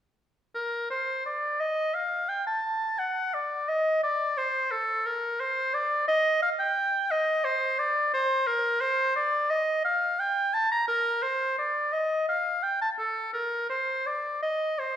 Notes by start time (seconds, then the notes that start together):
0.55 A#4
0.90 C5
1.26 D5
1.60 D#5
1.94 F5
2.29 G5
2.47 A5
2.99 F#5
3.34 D5
3.69 D#5
4.03 D5
4.37 C5
4.71 A4
5.06 A#4
5.40 C5
5.74 D5
6.08 D#5
6.42 F5
6.59 G5
7.11 D#5
7.44 C5
7.79 D5
8.14 C5
8.47 A#4
8.81 C5
9.16 D5
9.50 D#5
9.84 F5
10.19 G5
10.54 A5
10.72 A#5
10.88 A#4
11.23 C5
11.58 D5
11.93 D#5
12.28 F5
12.63 G5
12.82 A5
12.99 A4
13.33 A#4
13.69 C5
14.06 D5
14.42 D#5
14.79 C5